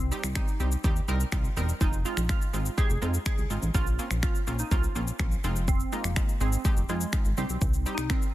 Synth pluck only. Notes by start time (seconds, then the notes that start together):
Already playing: C4
0.36 D#4
1.81 D#4
2.05 F4
2.30 F4
2.78 G#4
3.26 G#4
3.75 F4
4.23 F4
4.60 D#4
4.72 F4
5.68 C4
5.93 A#3
6.41 C4
6.90 G#3
7.38 C4
7.94 D#4
8.11 C4